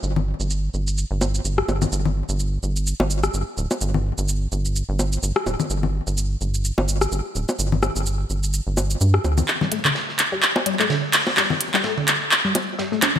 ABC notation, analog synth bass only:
X:1
M:4/4
L:1/16
Q:"Swing 16ths" 1/4=127
K:Cmix
V:1 name="Analog synth bass" clef=bass
G,,,3 G,,,3 G,,,3 G,,,3 G,,, z G,,, z | G,,,3 G,,,3 G,,,3 G,,,3 G,,, z D,,, z | G,,,3 G,,,3 G,,,3 G,,,3 G,,, z D,,, z | G,,,3 G,,,3 G,,,3 G,,,3 G,,, z D,,, z |
G,,,3 G,,,3 G,,,3 G,,,3 G,, z D,, z | z16 | z16 |]